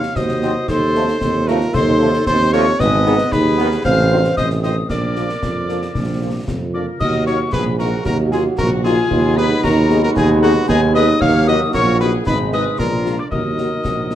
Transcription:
Already playing: C#5 F5 F6
0.03 snare
0.16 D#2 F#4 C5 D#5 D#6, concert bass drum, snare
0.29 snare
0.42 F#3 C4 D#4 F#4, snare
0.68 D#2 D#4 A4 C5 C6, concert bass drum, snare, crash
0.95 F3 A3 C4 F4 A4, snare
1.08 snare
1.21 D#2 C4, concert bass drum, snare
1.48 F3 A3 C4 F4 F#4 A4 A#4 A#5, snare
1.61 snare
1.74 D#2 D#4 A4 C5 C6, concert bass drum, snare
2.00 F3 A3 C4 F4 A4
2.14 snare
2.27 D#2 C4 A4 C5 C6, concert bass drum, snare
2.40 snare
2.53 F3 A3 C4 F4 A4 A#4 C#5 C#6, snare
2.79 G#1 B3 B4 D#5 D#6, concert bass drum, snare, crash
3.05 D#3 B3 D#4 G#4, snare
3.18 snare
3.32 D#2 D#4 G#4 B4 B5, concert bass drum, snare
3.58 D#3 B3 D#4 G#4, snare
3.72 snare
3.84 A1 C4 C5 F5 F6, concert bass drum, snare
4.11 D#3 C4 D4 D#4 F4
4.24 snare
4.36 A1 C4 C5 D#5 D#6, concert bass drum, snare
4.50 snare
4.62 D#3 C4 D#4 F4 C5 D#5 D#6, snare
4.89 A#1 D4 A#4 D5 D6, concert bass drum, snare, crash
5.16 F3 A#3 D4 F4, snare
5.29 snare
5.42 F2 F4, concert bass drum, snare
5.68 F3 A#3 D4 F4, snare
5.82 snare
5.95 A#1 D4, concert bass drum, snare
6.21 F3 A#3 D4 F4
6.47 F2 F4, concert bass drum, snare
6.74 F3 A#3 D4 F4 A#4 D5 D6
7.00 D#2 F#3 A#3 F#4 A#4 D#5 D#6, concert bass drum, crash
7.26 A#3 D#4 F#4 A#4 C#5 C#6, snare
7.52 A#1 G#4 B4 B5, concert bass drum, snare
7.78 A#3 D#4 F#4 A#4 A#5, snare
8.05 D#2 F#4 A#4 A#5, concert bass drum, snare
8.32 A#3 D#4 F4 F#4 G#4 G#5, snare
8.58 A#1 F#4 A#4 A#5, concert bass drum, snare
8.84 A#3 D#4 F4 F#4 G#4 G#5, snare
9.10 D#2 G#3 B3 F4, concert bass drum, crash
9.37 B3 D#4 G#4 B4 B5, snare
9.63 D#2 F#4 A#4 A#5, concert bass drum, snare
9.90 B3 D#4 G#4, snare
10.02 F#4 A#4 A#5
10.15 D#2 D#4 G#4 G#5, concert bass drum, snare
10.41 B3 D#4 F#4 G#4 F#5, snare
10.67 D#2 D#4 G#4 G#5, concert bass drum, snare
10.94 B3 D#4 G#4 B4 D#5 D#6, snare
11.20 D#2 F#3 A#3 C#5 F5 F6, concert bass drum, crash
11.47 A#3 D#4 F#4 B4 D#5 D#6, snare
11.73 A#1 F4 A#4 C#5 C#6, concert bass drum, snare
11.99 A#3 D#4 F#4 G#4 B4 B5, snare
12.25 G#1 G#3 D#4 G#4 B4 B5, concert bass drum, snare
12.53 G#3 D#4 G#4 B4 D#5 D#6, snare
12.79 A#1 D4 F4 A#4 A#5, concert bass drum, snare
13.05 G#3 D4 F4, snare
13.18 A#4 D5 D6
13.31 D#2 F#3 D#4 F#4 A#4 D#5 D#6, concert bass drum, crash
13.57 F#3 D#4 F#4, snare
13.84 A#1, concert bass drum, snare
14.10 F#3 D#4 F#4, snare

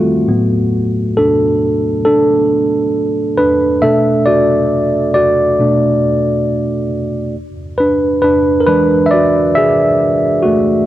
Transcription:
Already playing: D#3 G3 A3 C4 F4 F#4 A4
0.28 A2 F#3 B3
1.17 D4 A4
2.05 D4 A4
3.38 D4 B4
3.82 B2 A3 D4 A4 E5
4.26 F#4 D5
5.14 F#4 D5
5.60 B2 A3 D4
7.78 D4 B4
8.22 D4 B4
8.60 A#4
8.67 E3 G#3 D4 B4
9.06 E5
9.11 F#4 D5
9.55 G#4 E5
10.43 A3 F#4

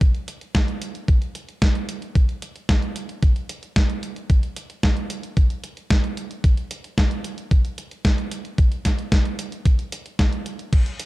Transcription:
0.01 kick, closed hi-hat
0.15 closed hi-hat
0.28 closed hi-hat
0.41 closed hi-hat
0.55 kick, snare, closed hi-hat
0.68 closed hi-hat
0.82 closed hi-hat
0.95 closed hi-hat
1.08 kick, closed hi-hat
1.22 closed hi-hat
1.35 closed hi-hat
1.49 closed hi-hat
1.62 kick, snare, closed hi-hat
1.75 closed hi-hat
1.89 closed hi-hat
2.02 closed hi-hat
2.15 kick, closed hi-hat
2.29 closed hi-hat
2.42 closed hi-hat
2.56 closed hi-hat
2.69 kick, snare, closed hi-hat
2.82 closed hi-hat
2.96 closed hi-hat
3.09 closed hi-hat
3.23 kick, closed hi-hat
3.36 closed hi-hat
3.49 closed hi-hat
3.63 closed hi-hat
3.76 kick, snare, closed hi-hat
3.90 closed hi-hat
4.03 closed hi-hat
4.16 closed hi-hat
4.30 kick, closed hi-hat
4.43 closed hi-hat
4.56 closed hi-hat
4.70 closed hi-hat
4.83 kick, snare, closed hi-hat
4.97 closed hi-hat
5.10 closed hi-hat
5.23 closed hi-hat
5.37 kick, closed hi-hat
5.50 closed hi-hat
5.64 closed hi-hat
5.77 closed hi-hat
5.90 kick, snare, closed hi-hat
6.04 closed hi-hat
6.17 closed hi-hat
6.31 closed hi-hat
6.44 kick, closed hi-hat
6.57 closed hi-hat
6.71 closed hi-hat
6.84 closed hi-hat
6.98 kick, snare, closed hi-hat
7.11 closed hi-hat
7.24 closed hi-hat
7.38 closed hi-hat
7.51 kick, closed hi-hat
7.65 closed hi-hat
7.78 closed hi-hat
7.91 closed hi-hat
8.05 kick, snare, closed hi-hat
8.18 closed hi-hat
8.31 closed hi-hat
8.45 closed hi-hat
8.58 kick, closed hi-hat
8.72 closed hi-hat
8.85 kick, snare, closed hi-hat
8.99 closed hi-hat
9.12 kick, snare, closed hi-hat
9.25 closed hi-hat
9.39 closed hi-hat
9.52 closed hi-hat
9.65 kick, closed hi-hat
9.79 closed hi-hat
9.92 closed hi-hat
10.06 closed hi-hat
10.19 kick, snare, closed hi-hat
10.33 closed hi-hat
10.46 closed hi-hat
10.59 closed hi-hat
10.73 kick, closed hi-hat, crash
10.86 closed hi-hat
11.00 closed hi-hat

